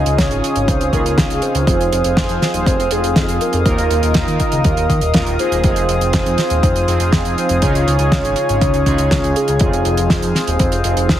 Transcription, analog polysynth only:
0.00 0.90 C#3 loud
0.00 0.90 C#4 medium
0.00 0.90 D#4 medium
0.00 0.90 F4 medium
0.00 0.90 G#4 loud
0.93 1.64 C#3 loud
0.93 1.64 C#4 medium
0.93 1.64 D#4 medium
0.93 1.64 F4 medium
0.93 1.64 G#4 loud
1.67 2.88 F3 medium
1.67 2.88 C4 medium
1.67 2.88 D#4 medium
1.67 2.88 F4 medium
1.67 2.88 G#4 loud
2.91 3.63 F3 medium
2.91 3.63 C4 medium
2.91 3.63 D#4 medium
2.91 3.63 F4 medium
2.91 3.63 G#4 medium
3.66 4.87 D#3 loud
3.66 4.87 A#3 medium
3.66 4.87 D#4 medium
3.66 4.87 F4 medium
3.66 4.87 A#4 loud
5.14 5.36 D#3 loud
5.14 5.36 A#3 medium
5.14 5.36 D#4 medium
5.14 5.36 F4 medium
5.14 5.36 A#4 loud
5.39 5.61 A#3 loud
5.39 5.61 D#4 medium
5.39 5.61 F4 medium
5.39 5.61 G#4 loud
5.64 6.85 F3 medium
5.64 6.85 C4 medium
5.64 6.85 D#4 medium
5.64 6.85 F4 medium
5.64 6.85 G#4 loud
6.88 7.59 F3 medium
6.88 7.59 C4 medium
6.88 7.59 D#4 medium
6.88 7.59 F4 medium
6.88 7.59 G#4 medium
7.62 8.83 C#3 loud
7.62 8.83 C#4 medium
7.62 8.83 D#4 medium
7.62 8.83 F4 medium
7.62 8.83 G#4 loud
8.86 9.58 C#3 loud
8.86 9.58 C#4 medium
8.86 9.58 D#4 medium
8.86 9.58 F4 medium
8.86 9.58 G#4 loud
9.61 10.82 F3 medium
9.61 10.82 C4 medium
9.61 10.82 D#4 medium
9.61 10.82 F4 medium
9.61 10.82 G#4 medium
10.85 11.20 F3 medium
10.85 11.20 C4 medium
10.85 11.20 D#4 medium
10.85 11.20 F4 medium
10.85 11.20 G#4 medium

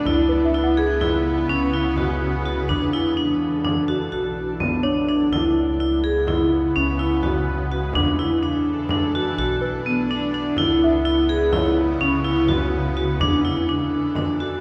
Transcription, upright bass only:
0.06 1.47 C#2 medium
1.50 2.67 C#2 medium
2.69 4.10 E2 medium
4.12 5.29 B1 medium
5.32 6.72 C#2 medium
6.76 7.93 C#2 medium
7.95 9.35 E2 medium
9.38 10.55 B1 medium
10.58 11.98 C#2 medium
12.01 13.18 C#2 medium
13.21 14.61 E2 medium

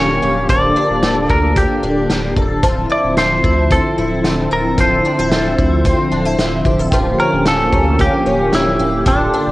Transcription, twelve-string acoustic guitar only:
0.00 0.48 F3 medium
0.00 1.06 A#3 medium
0.00 0.54 C#4 medium
0.00 0.22 G4 medium
0.22 0.49 G4 medium
0.49 2.63 F3 medium
0.49 1.02 A4 medium
0.76 1.29 D4 medium
1.03 2.36 A4 medium
1.29 1.83 D4 medium
1.56 2.09 A#3 medium
1.83 2.89 D4 medium
2.10 2.69 A#3 medium
2.37 2.64 A4 medium
2.63 4.78 F3 medium
2.63 3.17 A4 medium
2.90 3.44 E4 medium
3.17 4.51 A4 medium
3.44 3.98 E4 medium
3.71 4.24 C4 medium
3.98 5.05 E4 medium
4.25 5.84 C4 medium
4.51 4.79 A4 medium
4.78 6.93 F3 medium
4.78 5.32 A4 medium
5.05 5.19 D4 medium
5.19 5.58 E4 soft
5.32 6.65 A4 medium
5.59 6.11 E4 medium
5.86 6.38 C4 medium
6.12 6.26 D4 medium
6.26 6.98 E4 soft
6.39 6.98 C4 medium
6.66 6.80 G4 medium
6.80 6.93 A4 soft
6.93 9.05 F3 medium
6.93 7.46 G4 soft
7.20 7.71 C#4 medium
7.46 8.79 G4 medium
7.73 8.25 C#4 medium
7.99 8.52 A#3 medium
8.26 9.12 C#4 medium
8.53 9.52 A#3 medium
8.79 9.06 G4 medium
9.06 9.52 F3 medium
9.06 9.52 A4 medium
9.34 9.52 D4 medium

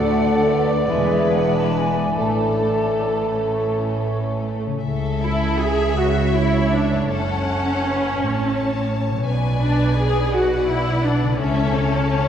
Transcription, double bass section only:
0.00 0.85 D2 medium
0.87 2.19 E1 medium
2.18 4.59 A1 soft
4.84 7.06 C#2 medium
7.10 8.18 F#1 medium
8.21 9.28 A1 medium
9.28 11.37 B1 medium
11.42 12.28 C#2 medium

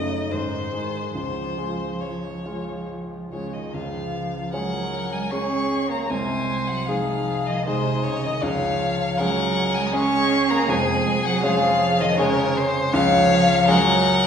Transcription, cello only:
0.00 0.33 C#3 medium
0.32 1.15 D#3 soft
1.16 3.29 F3 soft
3.34 3.56 C#3 soft
3.54 3.76 D#3 soft
3.74 4.56 F3 medium
4.54 5.13 F#3 medium
5.12 5.33 G#3 medium
5.31 5.92 C#4 medium
5.90 6.09 A#3 medium
6.10 6.71 G#3 medium
6.70 6.91 F#3 medium
6.89 7.49 F3 medium
7.48 7.69 D#3 medium
7.68 8.06 C3 medium
8.05 8.25 C#3 medium
8.24 8.44 D#3 medium
8.42 9.19 F3 medium
9.19 9.76 F#3 medium
9.75 9.94 G#3 medium
9.92 10.52 C#4 loud
10.51 10.71 A#3 medium
10.69 11.24 G#3 medium
11.24 11.46 F#3 medium
11.45 12.01 F3 medium
11.99 12.19 D#3 medium
12.17 12.56 C#3 medium
12.93 13.71 F3 loud
13.69 14.26 F#3 loud

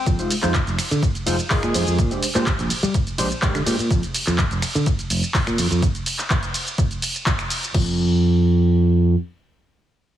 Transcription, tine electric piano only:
0.19 0.32 G#3 medium
0.19 0.32 D#4 medium
0.19 0.32 F4 medium
0.19 0.32 C5 medium
0.42 0.56 G#3 loud
0.42 0.56 D#4 medium
0.42 0.56 F4 medium
0.42 0.56 C5 loud
1.26 1.35 G#3 loud
1.26 1.35 D#4 medium
1.26 1.36 F4 medium
1.26 1.36 C5 loud
1.50 1.64 G#3 loud
1.50 1.65 D#4 medium
1.50 1.65 F4 medium
1.50 1.65 A#4 loud
1.74 1.83 G#3 medium
1.74 1.83 D#4 medium
1.74 1.83 F4 medium
1.74 1.83 C5 medium
2.11 2.24 G#3 medium
2.11 2.24 D4 medium
2.11 2.24 G4 medium
2.11 2.24 C5 medium
2.35 2.48 G#3 medium
2.35 2.48 D4 medium
2.35 2.48 G4 medium
2.35 2.49 C5 loud
3.18 3.27 G#3 loud
3.18 3.27 D4 medium
3.18 3.27 G4 medium
3.18 3.27 C5 loud
3.42 3.56 G#3 medium
3.42 3.56 D4 medium
3.42 3.57 G4 medium
3.42 3.57 A#4 loud
3.66 3.75 G#3 medium
3.66 3.75 D4 medium
3.66 3.75 G4 medium
3.66 3.76 C5 medium

